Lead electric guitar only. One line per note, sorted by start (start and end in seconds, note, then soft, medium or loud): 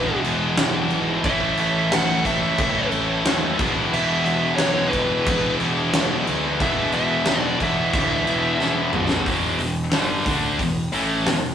0.00 0.21 B4 medium
1.25 1.56 E5 loud
1.60 1.94 E5 medium
1.94 2.24 F#5 loud
2.25 2.88 E5 loud
3.94 4.24 E5 loud
4.25 4.55 E5 loud
4.55 4.88 C#5 loud
4.87 5.53 B4 loud
6.62 6.93 E5 loud
6.95 7.42 E5 medium
7.42 7.57 D5 medium
7.63 8.91 E5 loud